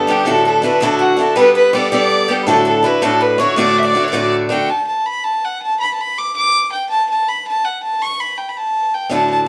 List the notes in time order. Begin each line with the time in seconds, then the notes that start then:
Already playing: D3 A4
0.07 G3 A3 B3 D4 G4 G5
0.25 D2 A2 D3 D4 E4 F#4 A4 A5
0.45 A4 A5
0.62 D3 D4 E4 F#4 B4
0.80 D2 A2 D3 D4 E4 F#4 A4 A5
0.99 F#4 F#5
1.17 D3 D4 E4 F#4 A4 A5
1.36 G3 B3 D4 A4 B4 B5
1.55 B4 B5
1.73 G3 B3 D4 A4 D5 D6
1.92 G3 B3 D4 A4 D5 D6
2.10 A4
2.28 G3 B3 D4 G4 A4
2.43 D2 A2 A4 B5
2.47 D3 D4 E4 F#4 A4 A5
2.65 A4 A5
2.83 D3 D4 E4 F#4 B4 B5
3.01 D2 A2 D3 D4 E4 F#4 A4 A5
3.21 B4 B5
3.38 D3 D4 E4 F#4 C#5 C#6
3.56 D2 A2 D3 A3 D4 F#4 D5 D6
3.78 E5
3.83 D5 D6
3.93 D3 A3 D4 F#4
4.04 C#5 D6
4.08 D5
4.12 D2 A2 D3 A3 D4 F#4
4.49 D3 A3 D4 F#4 G5
4.70 A5
4.87 A5
5.06 B5
5.24 A5
5.44 F#5
5.62 A5
5.80 B5
5.93 A5
6.01 B5
6.18 D6
6.36 D6
6.72 G5
6.90 A5
7.10 A5
7.28 B5
7.48 A5
7.64 F#5
7.83 A5
8.02 C#6
8.20 B5
8.38 G5
8.49 B5
8.57 A5
8.94 G5
9.09 D2 A2 D3 D4 E4 F#4 A5
9.30 A5